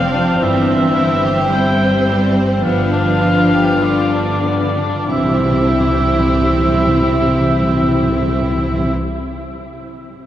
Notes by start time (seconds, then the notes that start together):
Already playing: F1 F2 F3 C4 C5 D5 F5
0.14 D4
0.40 G1 G2 E3 G3 C5 E5
0.68 C4
0.96 C4 E4
1.24 G4
1.51 G3 E4 C5 G5
1.80 C4
2.08 G3 C4
2.35 C4
2.62 G2 F3 B3 D4 B4 F5
2.93 D4
3.21 D4 F4
3.51 G4
3.81 D3 F4 B4 D5
4.12 D4
4.46 B3 D4
4.78 D4
5.07 C2 C3 E3 C4 E4 G4 E5
5.16 C3 C4
5.24 C3 G4
5.30 C3 C5
5.37 C3 G5
5.44 C3
5.52 C3
5.59 C3
5.66 C3
5.72 C3
5.79 C3
5.86 C3
5.93 C3
6.00 C3
6.06 C3
6.12 C3
6.19 C3
6.26 C3
6.32 C3
6.39 C3
6.46 C3
6.53 C3
6.60 C3
6.67 C3
6.73 C3
6.81 C3
6.87 C3
6.94 C3
7.00 C3
7.07 C3
7.14 C3
7.21 C3
7.27 C3
7.34 C3
7.42 C3
7.48 C3
7.55 C3
7.62 C3
7.68 C3
7.75 C3
7.82 C3
7.88 C3
7.94 C3
8.01 C3
8.08 C3
8.14 C3
8.21 C3
8.28 C3
8.35 C3
8.42 C3
8.49 C3
8.57 C3
8.64 C3
8.71 C3
8.77 C3
8.84 C3